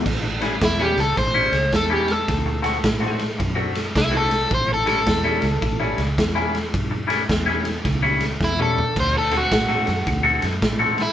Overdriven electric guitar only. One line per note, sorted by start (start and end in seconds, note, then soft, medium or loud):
0.65 0.81 E4 medium
0.82 0.99 G4 medium
1.00 1.17 A4 medium
1.18 1.72 C5 medium
1.76 1.93 A4 medium
1.93 2.12 G4 medium
2.12 3.19 A4 medium
3.97 4.14 E4 medium
4.17 4.51 A4 medium
4.54 4.71 C5 medium
4.74 4.88 A4 medium
4.89 5.96 A4 medium
8.44 8.60 E4 medium
8.62 8.96 A4 medium
9.00 9.16 C5 medium
9.18 9.37 A4 medium
9.37 10.43 F#4 medium
11.02 11.13 E4 medium